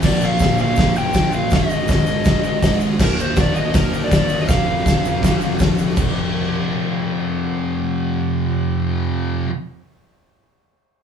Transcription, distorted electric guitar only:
0.03 A#2 F3 A#3
0.41 A#2 F3 A#3
0.60 F3 A#3
0.96 F3 A#3
1.15 A#2 F3 A#3
1.52 G#2 D#3 G#3
1.89 G#2 D#3 G#3
2.07 D#3 G#3
2.44 D#3 G#3
2.61 G#2 D#3 G#3
2.99 D#3 A#3 D#4
3.37 D#3 A#3 D#4
3.57 A#3 D#4
3.93 A#3 D#4
4.12 D#3 A#3 D#4
4.50 F2 C3 F3
4.86 F2 C3 F3
5.05 C3 F3
5.42 C3 F3
5.60 F2 C3 F3
5.95 F2 C3 F3

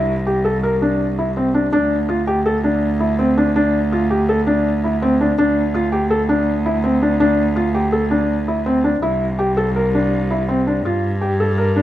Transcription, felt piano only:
Already playing: E4
0.26 G4
0.45 A4
0.63 A#4
0.82 D4
1.19 E4
1.37 C4
1.54 D4
1.73 D4
2.09 F4
2.27 G4
2.46 A4
2.64 D4
3.00 E4
3.19 C4
3.37 D4
3.56 D4
3.92 F4
4.10 G4
4.29 A4
4.47 D4
4.84 E4
5.02 C4
5.21 D4
5.38 D4
5.74 F4
5.92 G4
6.10 A4
6.29 D4
6.66 E4
6.84 C4
7.02 D4
7.20 D4
7.56 F4
7.75 G4
7.92 A4
8.11 D4
8.48 E4
8.66 C4
8.84 D4
9.02 E4
9.39 G4
9.57 A4
9.76 A#4
9.95 D4
10.31 E4
10.49 C4
10.67 D4
10.85 F4
11.21 G4
11.40 A4
11.58 A#4
11.76 D4

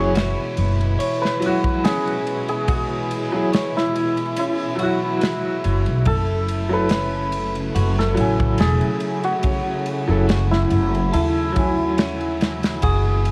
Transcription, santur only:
Already playing: E4 B4 C#5
1.22 B4
1.84 G#4
2.49 G#4
3.77 E4
4.39 E4
6.07 A4
6.73 B4
7.98 A4
8.60 G#4
9.24 F#4
10.51 E4
11.13 E4
12.83 G#4

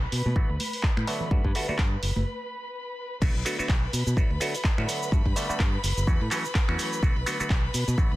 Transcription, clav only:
0.36 D3 F#3 A3 B3 F#4
1.07 D3 F#3 A3 B3 F#4
1.31 D3 G3 A3 B3 F#4
1.55 D3 G3 A3 B3 F#4
1.68 D3 G3 A3 B3 F#4
3.21 D3 F#3 A3 B3 F#4
3.45 D3 F#3 A3 B3 F#4
3.59 D3 F#3 A3 B3 F#4
4.16 D3 F#3 A3 B3 F#4
4.40 D3 F#3 A3 B3 F#4
4.78 D3 F#3 A3 B3 F#4
5.12 D3 G3 A3 B3 F#4
5.36 D3 G3 A3 B3 F#4
5.49 D3 G3 A3 B3 F#4
6.07 E3 F#3 A3 C#4 F#4
6.31 E3 F#3 A3 C#4 F#4
6.68 E3 F#3 A3 C#4 F#4
7.02 D3 F#3 A3 B3 F#4
7.26 D3 F#3 A3 B3 F#4
7.39 D3 F#3 A3 B3 F#4
7.97 D3 F#3 A3 B3 F#4

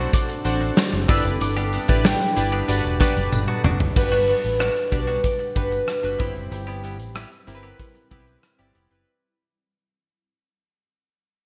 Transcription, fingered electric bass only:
0.45 A1
0.93 F#1
1.09 G1
1.25 F#1
1.41 G1
1.89 A1
2.37 G1
2.69 G1
2.84 E1
3.16 F#1
3.32 G1
3.64 F#1
3.96 G1
4.44 A1
4.92 B1
5.56 G1
6.04 F#1
6.20 G1
6.36 F#1
6.52 G1
7.00 A1
7.48 G1
8.11 B1
8.59 G1
8.75 F1
8.91 F#1

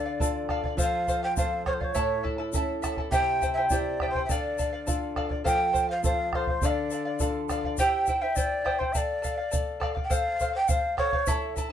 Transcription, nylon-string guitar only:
Already playing: D3
0.20 D4 F4 A4
0.77 F3
1.37 C4 F4 A4
1.95 A2
2.53 C#4 E4 A4
3.11 C3
3.71 C4 E4 G4
4.29 D3
4.87 D4 F4 A4
5.46 F3
6.03 C4 F4 A4
6.62 D3
7.20 D4 F4 A4

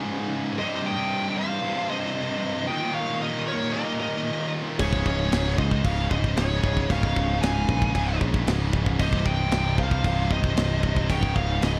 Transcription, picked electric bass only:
4.80 C#1
5.06 C#1
5.32 C#1
5.58 C#2
5.84 C#1
6.11 C#1
6.37 C#1
6.63 C#1
6.90 C#1
7.16 C#1
7.42 C#1
7.69 A#1
7.95 C#1
8.21 A#1
8.48 C#1
8.73 C#1
8.99 C1
9.26 C1
9.52 C1
9.78 C2
10.04 C1
10.30 C1
10.56 C1
10.83 C1
11.10 C#1
11.36 C#1
11.61 C#1

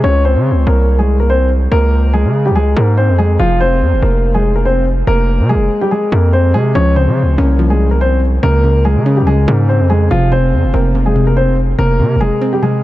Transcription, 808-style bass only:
0.04 C#2
0.36 C#3
0.51 C#2
0.67 C2
1.72 C#2
2.25 C#3
2.51 C#2
2.77 G#2
3.09 F2
3.40 F1
3.81 F2
3.93 F1
4.02 F1
5.07 F1
5.39 C3
5.55 F1
6.12 F2
6.54 C3
6.75 C#2
7.07 C#3
7.23 C#2
7.38 C2
8.43 C#2
8.96 C#3
9.22 C#2
9.48 G#2
9.80 F2
10.11 F1
10.53 F2
10.64 F1
10.74 F1
11.79 F1
12.00 C3
12.16 F1

